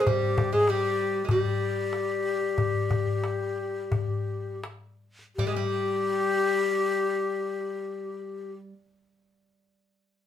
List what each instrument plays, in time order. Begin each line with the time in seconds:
0.01 oud G#3
0.07 oud G3, ney G4, darbuka dum
0.38 darbuka dum
0.53 oud G#3, ney G#4, darbuka ka
0.68 oud G3, ney G4, darbuka tek
0.84 darbuka ka
1.25 oud G#3
1.29 oud G3, ney G4, darbuka dum
1.61 darbuka ka
1.93 darbuka tek
2.41 darbuka ka
2.58 darbuka dum
2.91 darbuka dum
3.07 darbuka ka
3.24 darbuka tek
3.41 darbuka ka
3.57 darbuka ka
3.92 darbuka dum
4.28 darbuka ka
4.64 darbuka tek
5.19 darbuka ka
5.36 oud G3, ney G4, darbuka dum
5.47 oud G#3
5.56 oud G3